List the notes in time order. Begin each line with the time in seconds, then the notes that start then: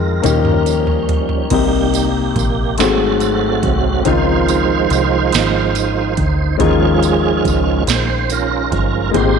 Already playing: F2 D#3 G#3 C4 D#4 F4 G#4 A#4
0.22 D#2 D#3 F3 G3 A#3 C#4 D#4 G4, closed hi-hat, mid tom, tambourine
0.26 C#4
0.45 mid tom
0.66 closed hi-hat, tambourine
0.87 floor tom
1.09 closed hi-hat, floor tom
1.29 floor tom
1.50 C2 C3 G3 A#3 C4 D#4 G4, kick, closed hi-hat, crash
1.94 closed hi-hat, tambourine
2.36 A#1, kick, closed hi-hat, tambourine
2.78 G#1 G#2 F#3 A3 C4 F#4 G#4 A4, snare, closed hi-hat, tambourine
3.20 closed hi-hat, tambourine
3.63 C2, kick, closed hi-hat
4.03 C#2 D#3 F3 G#3 C4 C#4 D#4 F4 C5, kick, closed hi-hat
4.08 F4
4.48 closed hi-hat, tambourine
4.90 C2, closed hi-hat, tambourine
5.32 G#1, snare, closed hi-hat, tambourine
5.75 D#3 F3, closed hi-hat, tambourine
6.17 D2, kick, closed hi-hat
6.58 D#2 D#3 F3 G#3 C#4 D#4 F4 G#4, kick, closed hi-hat
6.63 F4
7.03 closed hi-hat, tambourine
7.45 C#2, kick, closed hi-hat, tambourine
7.87 A#1 C5, snare, closed hi-hat, tambourine
8.30 C#4 F4 A#4, closed hi-hat, tambourine
8.72 G1 F3 G#3 C#4, kick, closed hi-hat
9.11 G#1 A#2 G#3 A#3 C4 D#4 G4 C5, kick, closed hi-hat
9.17 F#4
9.23 G4